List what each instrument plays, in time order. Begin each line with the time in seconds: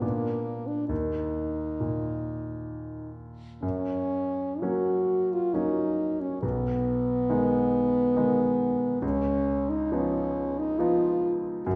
0.01 grand piano A#2 B3 D4, french horn A#3
0.67 french horn D4
0.89 grand piano D#2, french horn D#4
1.80 grand piano A#2
3.62 grand piano F#2, french horn C#4
4.62 grand piano F#3 A#3 C#4, french horn F#4
5.32 french horn F4
5.54 grand piano F#3 A#3 C#4, french horn D#4
6.21 french horn C#4
6.43 grand piano B1, french horn B3
7.29 grand piano D#3 G#3 D#4
8.16 grand piano D#3 G#3 D#4
9.02 grand piano C#2, french horn C#4
9.70 french horn D#4
9.92 grand piano F3 B3 D#4, french horn C#4
10.59 french horn D#4
10.79 grand piano F3 B3 D#4, french horn F4
11.66 grand piano F#2, french horn F#4